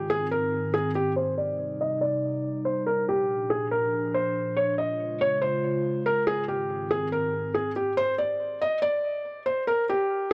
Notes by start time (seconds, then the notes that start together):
Already playing: G#2 D#3 C4
0.10 G#4
0.31 A#4
0.74 G#4
0.95 G4
1.16 C3 G3 D#4 C5
1.38 D5
1.81 D#5
2.01 D5
2.65 C5
2.87 A#2 F3 D4 A#4
3.09 G4
3.50 G#4
3.71 A#4
4.14 C5
4.57 C#3 G#3 F4 C#5
4.78 D#5
5.21 C#5
5.42 C5
6.06 A#4
6.27 G#2 D#3 C4 G#4
6.48 G4
6.91 G#4
7.12 A#4
7.54 G#4
7.76 G4
7.97 C5
8.18 D5
8.62 D#5
8.82 D5
9.46 C5
9.67 A#4
9.89 G4